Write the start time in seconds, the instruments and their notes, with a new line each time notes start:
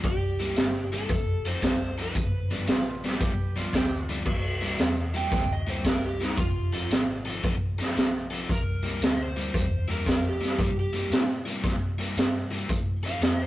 0.03 fingered electric bass C2, electric slide guitar G4, kick, closed hi-hat
0.40 overdriven electric guitar C3 G3 A#3 E4, closed hi-hat
0.56 fingered electric bass G1, snare, closed hi-hat
0.92 overdriven electric guitar C3 G3 A#3 E4, electric slide guitar A4, closed hi-hat
1.09 fingered electric bass F1, kick, closed hi-hat
1.45 overdriven electric guitar F3 C4 D#4 A4, electric slide guitar C5, closed hi-hat
1.62 fingered electric bass C2, kick, snare, closed hi-hat
1.98 overdriven electric guitar F3 C4 D#4 A4, closed hi-hat
2.02 electric slide guitar B4
2.15 fingered electric bass G1, kick, closed hi-hat
2.51 overdriven electric guitar G2 F3 B3 D4, closed hi-hat
2.67 fingered electric bass A1, tenor saxophone F4, snare, closed hi-hat
3.03 overdriven electric guitar G2 F3 B3 D4, tenor saxophone G4, snare, closed hi-hat
3.20 fingered electric bass B1, kick, closed hi-hat
3.56 overdriven electric guitar G2 F3 B3 D4, tenor saxophone F4, closed hi-hat
3.73 fingered electric bass D2, tenor saxophone G4, kick, snare, closed hi-hat
4.09 overdriven electric guitar G2 F3 B3 D4, closed hi-hat
4.25 fingered electric bass C2, kick, crash
4.61 overdriven electric guitar C3 G3 A#3 E4, closed hi-hat
4.78 fingered electric bass E2, snare, closed hi-hat
5.14 overdriven electric guitar C3 G3 A#3 E4, electric slide guitar G5, closed hi-hat
5.32 fingered electric bass D2, kick, snare, closed hi-hat
5.53 electric slide guitar D#5
5.67 overdriven electric guitar C3 G3 A#3 E4, electric slide guitar C5, closed hi-hat
5.84 fingered electric bass C2, electric slide guitar A#4, kick, snare, closed hi-hat
6.06 electric slide guitar G4
6.20 overdriven electric guitar C3 G3 A#3 E4, electric slide guitar D#4, snare, closed hi-hat
6.37 fingered electric bass F1, electric slide guitar F4, kick, closed hi-hat
6.73 overdriven electric guitar F3 C4 D#4 A4, closed hi-hat
6.90 fingered electric bass G#1, snare, closed hi-hat
7.25 overdriven electric guitar F3 C4 D#4 A4, closed hi-hat
7.43 fingered electric bass A1, kick, closed hi-hat
7.79 overdriven electric guitar F3 C4 D#4 A4, muted fingered electric bass stroke, snare, closed hi-hat
7.96 fingered electric bass A#1, snare, closed hi-hat
8.31 overdriven electric guitar F3 C4 D#4 A4, closed hi-hat
8.49 fingered electric bass C2, electric slide guitar A#4, kick, closed hi-hat
8.83 overdriven electric guitar C3 G3 A#3 E4, closed hi-hat
9.01 fingered electric bass D2, electric slide guitar D#5, snare, closed hi-hat
9.22 electric slide guitar C5
9.36 overdriven electric guitar C3 G3 A#3 E4, closed hi-hat
9.54 fingered electric bass E2, kick, closed hi-hat
9.88 overdriven electric guitar C3 G3 A#3 E4, electric slide guitar A#4, closed hi-hat
10.06 fingered electric bass F2, kick, snare, closed hi-hat
10.29 electric slide guitar G4
10.41 overdriven electric guitar C3 G3 A#3 E4, muted fingered electric bass stroke, snare, closed hi-hat
10.59 fingered electric bass G2, kick, closed hi-hat
10.80 electric slide guitar G4
10.93 overdriven electric guitar C3 G3 A#3 E4, closed hi-hat
11.11 fingered electric bass A2, snare, closed hi-hat
11.46 overdriven electric guitar C3 G3 A#3 E4, closed hi-hat
11.64 fingered electric bass A#2, kick, snare, closed hi-hat
11.99 overdriven electric guitar C3 G3 A#3 E4, closed hi-hat
12.16 fingered electric bass G2, snare, closed hi-hat
12.51 overdriven electric guitar C3 G3 A#3 E4, closed hi-hat
12.69 fingered electric bass A2, kick, closed hi-hat
13.03 overdriven electric guitar F3 C4 D#4 A4, electric slide guitar F5, closed hi-hat
13.21 fingered electric bass F2, electric slide guitar D#5, snare, closed hi-hat
13.42 electric slide guitar C5